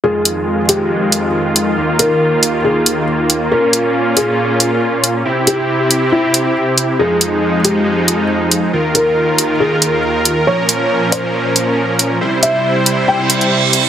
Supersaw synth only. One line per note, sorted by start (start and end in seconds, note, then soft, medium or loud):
0.04 1.76 F2 medium
0.04 3.48 D#3 medium
0.04 1.76 G#3 medium
0.04 3.48 F4 medium
1.77 3.50 D#2 medium
1.77 5.22 A#3 medium
3.51 5.24 A#2 medium
3.51 5.24 C#4 medium
3.51 5.24 F4 medium
5.25 6.98 C3 medium
5.25 6.98 C4 medium
5.25 6.98 E4 medium
5.25 6.98 G4 medium
6.99 8.71 F2 medium
6.99 8.71 F3 medium
6.99 8.71 G#3 medium
6.99 8.71 D#4 medium
8.73 10.45 D#2 medium
8.73 10.45 D#3 medium
8.73 10.45 F4 medium
8.73 12.18 A#4 medium
10.47 12.19 A#2 medium
10.47 12.19 F3 medium
10.47 12.19 C#4 medium
12.21 13.89 C3 medium
12.21 13.89 G3 medium
12.21 13.89 E4 medium
12.21 13.89 C5 medium